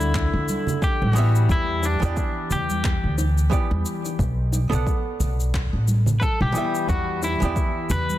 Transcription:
0.00 0.27 D2 medium
0.00 1.11 D3 medium
0.00 1.12 B3 medium
0.00 0.86 E4 loud
0.00 1.13 F#4 medium
0.00 1.14 F#5 medium
0.00 high conga medium
0.00 cabasa soft
0.15 kick medium
0.15 clap medium
0.15 cabasa soft
0.33 0.45 D2 medium
0.49 high conga medium
0.49 cabasa medium
0.67 low conga medium
0.67 cabasa soft
0.82 1.03 G4 loud
0.82 kick medium
0.82 cabasa soft
1.01 1.45 A1 medium
1.01 1.51 F#4 medium
1.01 high bongo soft
1.01 high conga medium
1.13 1.97 E3 medium
1.13 1.99 G3 medium
1.13 1.98 B3 medium
1.13 cabasa medium
1.18 1.99 E5 medium
1.36 cabasa soft
1.49 1.96 E2 medium
1.49 1.85 E4 medium
1.49 kick medium
1.49 cabasa soft
1.82 2.54 D4 medium
1.82 high bongo medium
1.82 cabasa medium
2.00 2.14 E2 loud
2.00 3.47 E3 medium
2.00 3.48 B3 medium
2.00 3.49 G4 medium
2.00 cabasa soft
2.05 3.49 D5 medium
2.17 kick loud
2.17 cabasa soft
2.50 2.97 E2 medium
2.50 3.15 G4 medium
2.50 low conga medium
2.50 cabasa medium
2.70 high conga medium
2.70 cabasa soft
2.84 kick medium
2.84 clap medium
2.84 cabasa soft
3.04 3.47 D2 medium
3.18 high bongo medium
3.18 cabasa medium
3.38 cabasa soft
3.50 4.16 E3 medium
3.50 4.17 B3 medium
3.50 4.17 G4 medium
3.50 4.18 D5 medium
3.50 kick loud
3.50 cabasa soft
3.71 3.82 E2 medium
3.71 high bongo medium
3.71 high conga medium
3.86 cabasa medium
4.05 high bongo soft
4.05 cabasa soft
4.19 4.66 B1 medium
4.19 kick medium
4.19 cabasa soft
4.52 high bongo medium
4.52 cabasa medium
4.70 4.83 B1 loud
4.70 6.50 B3 medium
4.70 6.51 A4 medium
4.70 6.52 D5 medium
4.70 cabasa soft
4.75 6.53 F#5 medium
4.87 kick medium
4.87 cabasa soft
5.20 5.67 B1 medium
5.20 low conga medium
5.20 cabasa medium
5.40 cabasa soft
5.54 kick medium
5.54 clap medium
5.54 cabasa soft
5.73 6.16 A1 medium
5.88 high conga medium
5.88 cabasa medium
6.06 low conga medium
6.06 cabasa soft
6.20 6.42 A4 loud
6.20 6.22 B4 medium
6.20 kick medium
6.20 cabasa soft
6.40 6.52 B1 medium
6.40 6.89 G4 medium
6.40 high bongo soft
6.40 high conga medium
6.52 7.36 E3 medium
6.52 7.38 G3 medium
6.52 7.37 B3 medium
6.52 cabasa medium
6.57 7.39 E5 loud
6.75 cabasa soft
6.89 7.35 E2 medium
6.89 7.24 F#4 medium
6.89 kick medium
6.89 cabasa soft
7.22 7.93 E4 medium
7.22 high bongo medium
7.22 cabasa medium
7.40 7.53 E2 loud
7.40 8.18 E3 medium
7.40 8.18 B3 medium
7.40 8.18 G4 medium
7.40 cabasa soft
7.45 8.18 D5 medium
7.56 kick medium
7.56 cabasa soft
7.90 8.18 E2 medium
7.90 8.18 B4 loud
7.90 low conga medium
7.90 cabasa medium
8.09 high conga medium
8.09 cabasa soft

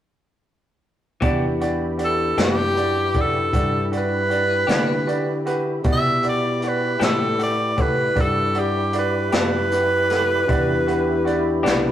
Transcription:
1.21 2.34 E2 medium
1.21 1.44 E3 medium
1.21 1.45 B3 medium
1.21 1.45 D4 medium
1.21 5.82 D4 medium
1.21 1.51 F#4 medium
1.21 1.51 G4 medium
1.21 5.81 G4 medium
1.21 1.45 G4 medium
1.21 5.81 B4 medium
1.21 1.51 D5 medium
1.21 kick medium
1.21 closed hi-hat medium
1.25 5.83 E4 medium
1.60 1.89 F#4 medium
1.60 1.90 G4 soft
1.60 1.90 D5 medium
1.60 closed hi-hat medium
1.98 2.27 F#4 soft
1.98 2.27 G4 soft
1.98 2.28 D5 soft
1.98 closed hi-hat medium
2.05 2.39 A4 medium
2.37 3.50 F#2 medium
2.37 2.61 E3 medium
2.37 2.61 B3 medium
2.37 2.61 D4 medium
2.37 2.67 F#4 soft
2.37 2.67 G4 soft
2.37 2.61 G4 medium
2.37 2.67 D5 medium
2.37 snare medium
2.37 closed hi-hat medium
2.44 3.23 G4 medium
2.77 3.05 F#4 soft
2.77 3.05 G4 soft
2.77 3.06 D5 medium
2.77 closed hi-hat medium
3.14 3.44 F#4 soft
3.14 3.44 G4 soft
3.14 3.44 D5 soft
3.14 kick medium
3.14 closed hi-hat medium
3.21 3.93 A4 medium
3.52 4.65 G2 medium
3.52 3.82 F#4 soft
3.52 3.83 G4 soft
3.52 3.83 D5 soft
3.52 kick medium
3.52 closed hi-hat medium
3.92 4.21 F#4 soft
3.92 4.21 G4 soft
3.92 4.21 D5 soft
3.92 closed hi-hat medium
3.98 5.45 B4 medium
4.30 4.59 F#4 soft
4.30 4.59 G4 soft
4.30 4.59 D5 soft
4.30 closed hi-hat medium
4.67 5.81 D3 medium
4.67 4.92 E3 soft
4.67 4.92 B3 soft
4.67 4.92 D4 medium
4.67 4.97 F#4 soft
4.67 4.91 G4 medium
4.67 4.98 G4 soft
4.67 4.97 D5 medium
4.67 snare medium
4.67 closed hi-hat medium
5.07 5.36 F#4 medium
5.07 5.36 G4 soft
5.07 5.36 D5 medium
5.07 closed hi-hat medium
5.46 5.75 F#4 medium
5.46 5.75 G4 medium
5.46 5.75 B4 medium
5.46 closed hi-hat medium
5.83 6.97 B2 medium
5.83 10.45 E4 medium
5.83 6.14 F#4 medium
5.83 10.44 G4 medium
5.83 6.14 G4 medium
5.83 10.45 B4 medium
5.83 10.44 D5 medium
5.83 6.14 D5 medium
5.83 kick loud
5.83 closed hi-hat medium
5.93 6.26 E5 medium
6.23 6.52 F#4 soft
6.23 6.52 G4 soft
6.23 6.53 D5 medium
6.23 closed hi-hat soft
6.29 6.70 D5 medium
6.62 6.92 F#4 soft
6.62 6.92 G4 soft
6.62 6.92 D5 medium
6.62 closed hi-hat soft
6.68 7.03 B4 medium
7.00 8.13 A2 medium
7.00 7.24 E3 soft
7.00 7.24 B3 medium
7.00 7.24 D4 medium
7.00 7.30 F#4 soft
7.00 7.23 G4 medium
7.00 7.31 G4 soft
7.00 7.30 A4 medium
7.00 snare medium
7.00 closed hi-hat medium
7.04 7.40 A4 medium
7.38 7.68 F#4 soft
7.38 7.68 G4 soft
7.38 7.69 A4 medium
7.38 closed hi-hat medium
7.43 7.83 D5 medium
7.76 8.06 F#4 soft
7.76 8.06 G4 soft
7.76 8.07 A4 medium
7.76 kick medium
7.76 closed hi-hat medium
7.82 8.23 B4 medium
8.15 9.29 G2 medium
8.15 8.45 F#4 soft
8.15 8.45 G4 soft
8.15 8.45 D5 soft
8.15 kick medium
8.15 closed hi-hat medium
8.21 8.61 A4 medium
8.54 8.84 F#4 soft
8.54 8.84 G4 soft
8.54 8.84 D5 medium
8.54 closed hi-hat soft
8.59 8.95 G4 medium
8.93 9.22 F#4 soft
8.93 9.23 G4 soft
8.93 9.23 D5 medium
8.93 closed hi-hat medium
8.99 9.34 B4 medium
9.31 10.46 F#2 medium
9.31 9.57 E3 soft
9.31 9.57 B3 medium
9.31 9.56 D4 medium
9.31 9.61 F#4 soft
9.31 9.61 G4 soft
9.31 9.56 G4 medium
9.31 9.62 D5 medium
9.31 snare medium
9.31 closed hi-hat medium
9.36 11.63 B4 medium
9.71 10.01 F#4 soft
9.71 10.01 G4 soft
9.71 10.01 B4 medium
9.71 closed hi-hat medium
10.10 10.39 F#4 soft
10.10 10.39 G4 soft
10.10 10.39 A4 medium
10.10 snare soft
10.10 closed hi-hat medium
10.47 11.61 E2 medium
10.47 11.92 D4 medium
10.47 11.92 E4 medium
10.47 10.78 F#4 medium
10.47 11.92 G4 medium
10.47 10.78 G4 medium
10.47 11.92 B4 medium
10.47 10.78 D5 medium
10.47 kick medium
10.47 closed hi-hat medium
10.87 11.16 F#4 medium
10.87 11.16 G4 medium
10.87 11.16 B4 medium
10.87 closed hi-hat medium
11.24 11.54 F#4 medium
11.24 11.55 G4 medium
11.24 11.55 D5 medium
11.24 closed hi-hat medium
11.63 11.92 B1 medium
11.63 11.88 E3 medium
11.63 11.88 B3 medium
11.63 11.88 D4 medium
11.63 11.92 F#4 medium
11.63 11.87 G4 medium
11.63 11.92 G4 medium
11.63 11.92 D5 medium
11.63 closed hi-hat medium
11.67 snare loud

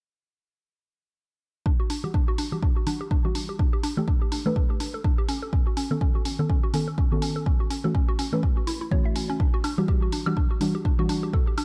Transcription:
1.66 1.71 D4 loud
1.66 kick loud
1.80 1.86 F#4 medium
1.90 1.99 D4 medium
1.90 open hi-hat loud
2.03 2.49 E3 medium
2.03 2.49 G3 medium
2.03 2.49 D4 medium
2.03 2.49 F#4 medium
2.03 2.10 G4 medium
2.14 2.23 D4 loud
2.14 kick loud
2.28 2.32 F#4 loud
2.38 2.47 D4 medium
2.38 open hi-hat loud
2.52 2.62 E3 medium
2.52 2.62 G3 medium
2.52 2.62 D4 medium
2.52 2.62 F#4 medium
2.52 2.56 G4 medium
2.63 2.72 D4 medium
2.63 kick loud
2.76 2.86 F#4 medium
2.86 3.00 E3 medium
2.86 3.00 G3 medium
2.86 3.00 D4 loud
2.86 3.00 D4 medium
2.86 3.00 F#4 medium
2.86 open hi-hat loud
3.01 3.07 G4 medium
3.11 3.16 D4 loud
3.11 kick loud
3.24 3.58 E3 medium
3.24 3.58 G3 medium
3.24 3.58 D4 medium
3.24 3.31 F#4 medium
3.24 3.58 F#4 medium
3.35 3.44 D4 medium
3.35 open hi-hat loud
3.49 3.56 G4 medium
3.59 3.68 D4 loud
3.59 kick loud
3.73 3.77 G4 loud
3.83 3.92 D4 loud
3.83 open hi-hat loud
3.97 4.07 E3 medium
3.97 4.07 A3 medium
3.97 4.07 D4 medium
3.97 4.07 G4 medium
3.97 4.01 A4 medium
4.08 4.17 D4 medium
4.08 kick loud
4.22 4.31 G4 medium
4.32 4.45 D4 medium
4.32 open hi-hat loud
4.45 4.55 E3 medium
4.45 4.55 A3 medium
4.45 4.56 D4 medium
4.45 4.52 A4 medium
4.45 4.56 B4 loud
4.56 4.61 D4 loud
4.56 kick loud
4.70 4.77 G4 medium
4.80 4.89 D4 medium
4.80 open hi-hat loud
4.94 5.01 A4 medium
5.04 5.13 D4 loud
5.04 kick loud
5.18 5.22 G4 loud
5.29 5.38 C#4 loud
5.29 open hi-hat loud
5.43 5.46 A4 medium
5.53 5.62 C#4 medium
5.53 kick loud
5.67 5.76 F#4 medium
5.77 5.90 C#4 loud
5.77 open hi-hat loud
5.90 6.36 D#3 medium
5.90 6.36 B3 medium
5.90 6.36 C#4 medium
5.90 5.98 A4 medium
5.90 6.36 A4 medium
6.01 6.07 C#4 loud
6.01 kick loud
6.15 6.22 F#4 medium
6.25 6.34 C#4 medium
6.25 open hi-hat loud
6.39 6.49 D#3 medium
6.39 6.49 B3 medium
6.39 6.49 C#4 medium
6.39 6.46 A4 medium
6.39 6.49 A4 medium
6.50 6.59 C#4 loud
6.50 kick loud
6.63 6.67 F#4 loud
6.73 6.87 D#3 medium
6.73 6.87 B3 medium
6.73 6.83 C#4 loud
6.73 6.87 C#4 medium
6.73 6.87 A4 medium
6.73 open hi-hat loud
6.88 6.92 A4 medium
6.98 7.07 C#4 medium
6.98 kick loud
7.11 7.45 D#3 medium
7.11 7.45 B3 medium
7.11 7.45 C#4 medium
7.11 7.22 F#4 medium
7.11 7.45 A4 loud
7.22 7.35 C#4 medium
7.22 open hi-hat loud
7.36 7.43 A4 medium
7.46 7.52 C#4 medium
7.46 kick loud
7.60 7.67 F#4 medium
7.70 7.79 C#4 medium
7.70 open hi-hat loud
7.84 7.94 E3 medium
7.84 7.94 A3 medium
7.84 7.94 C#4 medium
7.84 7.94 F#4 medium
7.84 7.91 A4 medium
7.95 8.04 C#4 loud
7.95 kick loud
8.09 8.13 F#4 loud
8.19 8.28 C#4 loud
8.19 open hi-hat loud
8.32 8.42 E3 medium
8.32 8.42 A3 medium
8.32 8.43 C#4 medium
8.32 8.37 A4 medium
8.32 8.43 B4 loud
8.43 8.52 C#4 medium
8.43 kick loud
8.57 8.67 F#4 medium
8.67 8.73 E4 loud
8.67 open hi-hat loud
8.81 8.88 E4 medium
8.91 9.38 E3 medium
8.91 9.39 A3 medium
8.91 9.39 C#4 medium
8.91 9.39 F#4 medium
8.91 8.97 C#5 loud
8.91 kick loud
9.05 9.09 E5 medium
9.16 9.25 C#4 medium
9.16 open hi-hat loud
9.30 9.36 C#4 loud
9.40 9.49 D4 loud
9.40 kick loud
9.54 9.58 F#4 loud
9.64 9.73 D4 loud
9.64 open hi-hat loud
9.64 high woodblock medium
9.77 10.23 E3 medium
9.77 10.23 G3 medium
9.77 10.23 D4 medium
9.77 10.23 F#4 medium
9.77 9.82 G4 medium
9.88 10.02 G4 loud
9.88 kick loud
10.02 10.12 F#4 medium
10.12 10.26 D4 medium
10.12 open hi-hat loud
10.26 10.36 E3 medium
10.26 10.36 G3 medium
10.26 10.36 D4 medium
10.26 10.36 F#4 medium
10.26 10.33 G4 medium
10.26 high woodblock medium
10.37 10.42 D4 loud
10.37 kick loud
10.51 10.57 F#4 medium
10.60 10.74 E3 medium
10.60 10.74 G3 medium
10.60 10.70 D4 medium
10.60 10.74 D4 medium
10.60 10.74 F#4 medium
10.60 open hi-hat loud
10.75 10.81 G4 medium
10.85 10.94 D4 loud
10.85 kick loud
10.98 11.32 E3 medium
10.98 11.32 G3 medium
10.98 11.32 D4 medium
10.98 11.03 F#4 loud
10.98 11.32 F#4 medium
11.09 11.18 D4 loud
11.09 open hi-hat loud
11.23 11.27 G4 medium
11.33 11.47 A4 loud
11.33 kick loud
11.47 11.57 G4 medium
11.58 11.65 D4 loud
11.58 open hi-hat loud
11.58 high woodblock medium

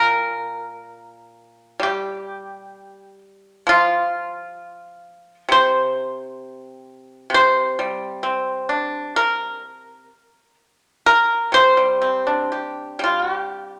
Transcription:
0.00 2.74 A#2 soft
0.00 0.84 G3 soft
0.00 1.77 A#4 medium
1.80 4.59 G3 soft
1.80 3.18 G4 medium
3.67 5.48 F3 medium
3.67 5.48 F4 medium
5.49 7.29 C3 medium
5.49 7.29 C5 medium
7.30 10.09 C3 soft
7.34 8.69 C5 medium
7.79 9.63 G3 soft
8.23 10.10 C4 soft
8.69 9.16 D4 soft
9.16 10.54 A#4 medium
11.06 11.51 A#4 medium
11.52 13.80 C3 soft
11.52 13.00 C5 medium
11.77 12.98 G3 soft
12.02 12.51 C4 soft
12.27 13.80 D4 soft
12.52 13.02 G4 soft
12.99 13.80 G3 soft
13.04 13.22 F4 medium
13.22 13.34 F#4 medium
13.34 13.80 G4 medium

